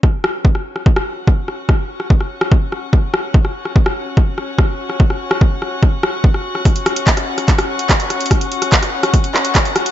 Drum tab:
HH |--------------------------------|--------------------------------|--------------------------------|--------------------------------|
CP |--------------------------------|--------------------------------|--------------------------------|--------------------------------|
SD |r---r-----r---r---r-----r---r---|r-----r---r---r-----r---r---r---|--r---r---r-----r---r---r-----r-|--r---r-----r---r---r-----r---r-|
BD |o-------o-------o-------o-------|o-------o-------o-------o-------|o-------o-------o-------o-------|o-------o-------o-------o-------|

HH |x-x-x-x-x-x---x-x-x---x-x-x-x-xx|x-x-x-x-x-x---x-x-x---x-x-x-x-x-|
CP |--------x-------x-------x-------|--------x-----------x---x-------|
SD |r---r-----r---r---r-----r---r---|r-----r---r---r-----r---r---r---|
BD |o-------o-------o-------o-------|o-------o-------o-------o-------|